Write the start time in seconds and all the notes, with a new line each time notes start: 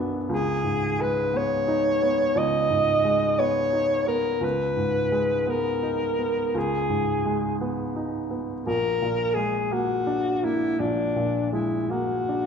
Already playing: B1 F#2 E3 B3 D4
0.29 C#2 G#4
0.64 G#2
0.99 G#3 B4
1.34 B3 C#5
1.68 D#4
2.02 B3
2.35 C#2 D#5
2.70 G#2
3.05 G#3
3.39 B3 C#5
3.73 D#4
4.07 B3 A#4
4.41 C#2 B4
4.77 G#2
5.12 G#3
5.47 B3 A#4
5.83 D#4
6.19 B3
6.54 C#2 G#4
6.89 G#2
7.25 G#3
7.61 B3
7.96 D#4
8.31 B3
8.65 A#1 A#4
9.02 A#2
9.34 G#3 G#4
9.71 A#3 F#4
10.07 D4
10.43 A#3 E4
10.79 A#1 D4
11.16 A#2
11.52 G#3 E4
11.90 A#3 F#4
12.29 D4